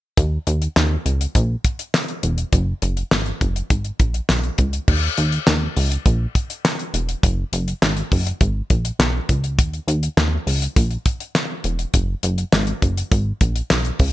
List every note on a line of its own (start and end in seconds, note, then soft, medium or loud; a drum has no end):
0.17 0.39 D#2 loud
0.17 kick loud
0.17 closed hi-hat medium
0.47 0.68 D#2 medium
0.47 closed hi-hat medium
0.62 closed hi-hat soft
0.76 0.97 D#2 loud
0.76 snare loud
0.76 clap medium
1.06 1.27 C#2 medium
1.06 closed hi-hat medium
1.21 closed hi-hat medium
1.35 1.56 A#1 loud
1.35 kick medium
1.35 closed hi-hat medium
1.65 kick medium
1.65 closed hi-hat medium
1.79 closed hi-hat medium
1.94 snare loud
1.94 clap medium
2.08 closed hi-hat soft
2.23 2.45 E1 medium
2.23 closed hi-hat medium
2.38 closed hi-hat soft
2.53 2.74 F#1 loud
2.53 kick loud
2.53 closed hi-hat medium
2.82 3.03 F#1 loud
2.82 closed hi-hat medium
2.97 closed hi-hat soft
3.11 3.33 G#1 medium
3.11 snare loud
3.11 clap medium
3.26 closed hi-hat soft
3.41 3.62 F#1 loud
3.41 kick medium
3.41 closed hi-hat medium
3.56 closed hi-hat medium
3.70 3.92 G#1 medium
3.70 kick loud
3.70 closed hi-hat medium
3.85 closed hi-hat soft
4.00 4.21 A#1 medium
4.00 kick medium
4.00 closed hi-hat medium
4.14 closed hi-hat medium
4.29 4.51 B1 medium
4.29 snare loud
4.29 clap medium
4.43 closed hi-hat soft
4.58 4.80 C#2 medium
4.58 kick medium
4.58 closed hi-hat medium
4.73 closed hi-hat soft
4.88 5.09 D#2 medium
4.88 kick loud
4.88 crash medium
5.17 5.39 D#2 loud
5.17 closed hi-hat medium
5.32 closed hi-hat soft
5.47 5.68 D#2 loud
5.47 snare loud
5.47 clap medium
5.76 5.98 C#2 medium
5.76 open hi-hat medium
5.92 closed hi-hat medium
6.06 6.27 A#1 loud
6.06 kick medium
6.06 closed hi-hat medium
6.35 kick medium
6.35 closed hi-hat medium
6.50 closed hi-hat medium
6.65 snare loud
6.65 clap medium
6.79 closed hi-hat soft
6.94 7.15 E1 medium
6.94 closed hi-hat medium
7.09 closed hi-hat medium
7.23 7.44 F#1 loud
7.23 kick loud
7.23 closed hi-hat loud
7.53 7.74 F#1 loud
7.53 closed hi-hat medium
7.68 closed hi-hat soft
7.82 8.03 G#1 loud
7.82 snare loud
7.82 clap medium
7.97 closed hi-hat soft
8.12 8.33 F#1 loud
8.12 kick medium
8.12 open hi-hat medium
8.27 closed hi-hat medium
8.41 8.62 G#1 medium
8.41 kick loud
8.41 closed hi-hat medium
8.70 8.92 A#1 medium
8.70 kick medium
8.70 closed hi-hat medium
8.85 closed hi-hat medium
8.99 9.21 B1 medium
8.99 snare loud
8.99 clap loud
9.29 9.60 C#2 medium
9.29 kick medium
9.29 closed hi-hat medium
9.44 closed hi-hat soft
9.59 9.80 D#2 medium
9.59 kick loud
9.59 closed hi-hat loud
9.73 closed hi-hat soft
9.88 10.09 D#2 loud
9.88 closed hi-hat medium
10.03 closed hi-hat soft
10.17 10.38 D#2 loud
10.17 snare loud
10.17 clap medium
10.47 10.68 C#2 medium
10.47 open hi-hat medium
10.62 closed hi-hat medium
10.76 10.97 A#1 medium
10.76 kick loud
10.76 closed hi-hat medium
10.91 closed hi-hat soft
11.06 kick medium
11.06 closed hi-hat medium
11.20 closed hi-hat medium
11.35 snare loud
11.35 clap loud
11.64 11.86 E1 medium
11.64 closed hi-hat medium
11.79 closed hi-hat soft
11.94 12.15 F#1 medium
11.94 kick loud
11.94 closed hi-hat loud
12.23 12.44 F#1 loud
12.23 closed hi-hat medium
12.38 closed hi-hat soft
12.53 12.74 G#1 loud
12.53 snare loud
12.53 clap medium
12.67 closed hi-hat soft
12.82 13.03 F#1 medium
12.82 kick medium
12.82 closed hi-hat medium
12.97 closed hi-hat medium
13.11 13.33 G#1 medium
13.11 kick loud
13.11 closed hi-hat medium
13.41 13.62 A#1 medium
13.41 kick medium
13.41 closed hi-hat medium
13.56 closed hi-hat medium
13.70 13.92 B1 medium
13.70 snare loud
13.70 clap medium
13.85 closed hi-hat soft
13.99 14.13 C#2 medium
13.99 kick medium
13.99 open hi-hat medium